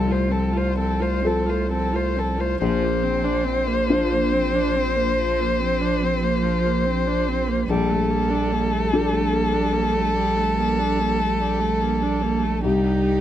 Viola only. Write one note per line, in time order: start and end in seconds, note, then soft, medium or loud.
0.07 0.30 F4 soft
0.29 0.55 C4 soft
0.53 0.76 F4 soft
0.77 1.01 C4 soft
1.00 1.24 F4 soft
1.22 1.48 C4 soft
1.46 1.69 F4 soft
1.69 1.94 C4 soft
1.93 2.18 F4 soft
2.16 2.40 C4 soft
2.38 2.60 F4 soft
2.61 2.84 F3 medium
2.83 3.05 A#3 medium
3.03 3.26 C4 medium
3.24 3.46 D4 medium
3.45 3.69 C4 medium
3.67 3.90 A#3 medium
3.88 4.12 F3 medium
4.11 4.34 A#3 medium
4.32 4.56 C4 medium
4.54 4.77 D4 medium
4.76 4.98 C4 medium
4.96 5.16 A#3 medium
5.17 5.41 F3 medium
5.40 5.62 A#3 medium
5.60 5.83 C4 medium
5.81 6.04 D4 medium
6.03 6.25 C4 medium
6.23 6.45 A#3 medium
6.43 6.67 F3 medium
6.65 6.87 A#3 medium
6.85 7.09 C4 medium
7.07 7.30 D4 medium
7.28 7.50 C4 medium
7.48 7.68 A#3 medium
7.69 7.91 G3 medium
7.90 8.12 A3 medium
8.11 8.32 A#3 medium
8.30 8.54 D4 medium
8.52 8.74 A#3 medium
8.73 8.95 A3 medium
8.93 9.13 G3 medium
9.12 9.34 A3 medium
9.32 9.54 A#3 medium
9.53 9.74 D4 medium
9.72 9.95 A#3 medium
9.94 10.15 A3 medium
10.15 10.38 G3 medium
10.36 10.59 A3 medium
10.58 10.81 A#3 medium
10.79 11.01 D4 medium
11.00 11.21 A#3 medium
11.19 11.42 A3 soft
11.41 11.61 G3 medium
11.60 11.83 A3 medium
11.82 12.04 A#3 medium
12.03 12.24 D4 medium
12.22 12.45 A#3 medium
12.43 12.64 A3 medium
12.65 13.21 D#4 medium